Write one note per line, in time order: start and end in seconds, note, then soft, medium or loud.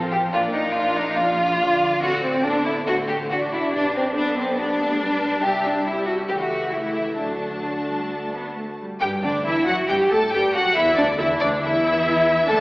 0.00 0.33 A1 medium
0.00 1.18 F3 medium
0.00 0.33 C4 medium
0.00 0.32 F4 soft
0.00 0.32 C5 medium
0.12 0.20 G4 medium
0.32 1.98 A#1 medium
0.32 1.16 A#3 medium
0.32 0.74 D4 soft
0.32 0.41 F4 medium
0.32 0.75 D5 medium
0.53 0.74 D#4 medium
0.75 1.17 D4 medium
0.75 0.96 F4 medium
0.75 1.58 F5 medium
0.96 1.18 D#4 medium
1.17 1.60 F3 medium
1.17 1.38 D4 medium
1.17 2.02 F4 loud
1.39 2.01 D4 soft
1.59 3.30 D3 medium
1.59 2.00 F5 medium
2.02 3.69 A1 medium
2.02 2.44 C4 medium
2.02 2.22 F#4 medium
2.02 2.85 A4 medium
2.02 2.87 D5 medium
2.23 2.43 C4 medium
2.44 2.86 B3 medium
2.44 2.65 D4 medium
2.66 2.74 E4 medium
2.87 3.30 A3 medium
2.87 2.95 F#4 loud
2.87 3.29 A4 medium
2.87 3.30 C5 medium
3.08 3.16 G4 medium
3.29 4.15 D4 medium
3.29 4.58 D4 medium
3.29 3.72 F#4 medium
3.29 3.38 F#4 medium
3.29 3.72 D5 medium
3.52 3.72 E4 medium
3.72 5.40 B1 medium
3.72 3.94 D4 medium
3.72 4.15 G4 medium
3.72 4.14 B4 medium
3.95 4.03 C4 medium
4.15 5.01 B3 medium
4.15 4.37 D4 medium
4.15 4.58 A4 medium
4.15 4.57 B4 medium
4.37 4.57 C4 medium
4.57 4.79 B3 medium
4.57 5.42 D4 medium
4.57 5.01 G4 soft
4.57 4.98 D5 medium
4.79 5.01 A3 medium
4.99 5.42 G3 medium
4.99 6.27 G3 medium
4.99 5.43 B4 medium
4.99 5.42 D5 medium
5.43 6.26 C2 medium
5.43 5.84 G3 medium
5.43 5.65 G4 medium
5.43 5.84 G4 medium
5.43 5.83 E5 medium
5.67 5.87 D4 medium
5.85 6.29 G3 medium
5.85 6.08 E4 medium
5.85 6.29 G4 medium
5.85 6.28 E5 soft
6.07 6.15 F#4 medium
6.29 7.19 C#2 medium
6.29 7.19 E3 medium
6.29 6.72 A3 soft
6.29 6.33 G4 medium
6.29 6.72 G4 soft
6.29 6.71 E5 soft
6.39 6.72 F#4 medium
6.72 7.18 A3 soft
6.72 6.81 E4 medium
6.72 7.18 G4 soft
6.72 7.17 E5 soft
6.82 7.17 E4 medium
7.16 8.81 D2 soft
7.16 7.60 F#3 soft
7.16 8.78 A3 soft
7.16 8.52 D4 medium
7.16 8.78 F#4 medium
7.16 8.80 A5 medium
7.65 7.73 F#3 medium
7.87 8.10 G3 medium
8.11 8.34 A3 medium
8.33 8.56 B3 medium
8.56 8.64 A3 medium
8.79 9.00 G3 soft
9.01 9.22 G2 medium
9.01 9.09 G3 medium
9.01 9.09 G4 medium
9.01 9.11 G4 medium
9.01 9.09 G5 medium
9.22 9.45 D2 medium
9.22 9.32 D3 medium
9.22 9.30 D4 medium
9.22 9.46 D4 medium
9.22 9.45 D5 medium
9.44 9.53 E2 medium
9.44 9.67 E3 medium
9.44 9.66 E4 medium
9.44 9.67 E4 medium
9.44 9.66 E5 medium
9.66 9.74 F#2 medium
9.66 9.75 F#3 medium
9.66 9.88 F#4 medium
9.66 9.89 F#4 medium
9.66 9.75 F#5 medium
9.89 10.10 G2 medium
9.89 9.98 G3 medium
9.89 10.11 G4 medium
9.89 10.12 G4 medium
9.89 9.97 G5 medium
10.10 10.32 A2 medium
10.10 10.20 A3 medium
10.10 10.33 A4 medium
10.10 10.32 A5 medium
10.32 10.54 G2 medium
10.32 10.54 G3 medium
10.32 10.40 G4 medium
10.32 10.54 G4 medium
10.32 10.54 G5 medium
10.54 10.62 F#2 medium
10.54 10.76 F#3 medium
10.54 10.62 F#4 medium
10.54 10.76 F#4 medium
10.54 10.75 F#5 medium
10.75 10.97 E2 medium
10.75 10.97 E3 medium
10.75 10.96 E4 medium
10.75 10.84 E4 medium
10.75 10.97 E5 loud
10.97 11.18 D2 medium
10.97 11.19 D3 medium
10.97 11.05 D4 medium
10.97 11.06 D4 medium
10.97 11.19 D5 medium
11.18 11.40 E2 medium
11.18 11.40 E3 medium
11.18 11.27 E4 medium
11.18 11.40 E4 medium
11.18 11.27 E5 medium
11.40 11.61 D2 medium
11.40 11.62 D3 medium
11.40 11.61 D4 medium
11.40 11.50 D4 medium
11.40 11.48 D5 medium
11.61 12.46 E2 medium
11.61 12.48 E3 medium
11.61 12.47 E4 medium
11.61 12.46 E5 medium
12.47 12.60 F#1 medium
12.47 12.58 D3 medium
12.47 12.57 A3 medium
12.47 12.60 D4 medium
12.47 12.55 A4 medium
12.47 12.60 A5 loud